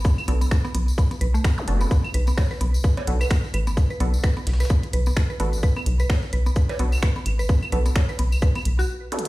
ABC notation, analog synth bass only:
X:1
M:4/4
L:1/8
Q:"Swing 16ths" 1/4=129
K:Bm
V:1 name="Analog synth bass" clef=bass
z B,,, z B,,, z B,,, z F,,, | z B,,, z B,,, z B,,, z A,,, | z B,,, z B,,, z B,,, z A,,, | z B,,, z B,,, z B,,, z A,,, |
z B,,, z B,,, z B,,, z2 |]